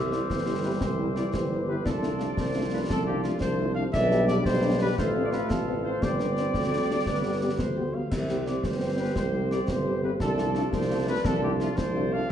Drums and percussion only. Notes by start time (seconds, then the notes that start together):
0.12 snare
0.30 concert bass drum, snare
0.81 concert bass drum, snare
1.16 snare
1.34 concert bass drum, snare
1.86 concert bass drum, snare
2.03 snare
2.20 snare
2.37 concert bass drum, snare
2.90 concert bass drum, snare
3.24 snare
3.41 concert bass drum, snare
3.94 concert bass drum, snare, crash
4.11 snare
4.28 snare
4.45 concert bass drum, snare
4.98 concert bass drum, snare
5.33 snare
5.50 concert bass drum, snare
6.02 concert bass drum, snare
6.19 snare
6.37 snare
6.54 concert bass drum, snare
7.06 concert bass drum, snare
7.59 concert bass drum, snare
8.12 concert bass drum, snare, crash
8.29 snare
8.46 snare
8.64 concert bass drum, snare
9.16 concert bass drum, snare
9.51 snare
9.68 concert bass drum, snare
10.20 concert bass drum, snare
10.38 snare
10.55 snare
10.73 concert bass drum, snare
11.25 concert bass drum, snare
11.60 snare
11.78 concert bass drum, snare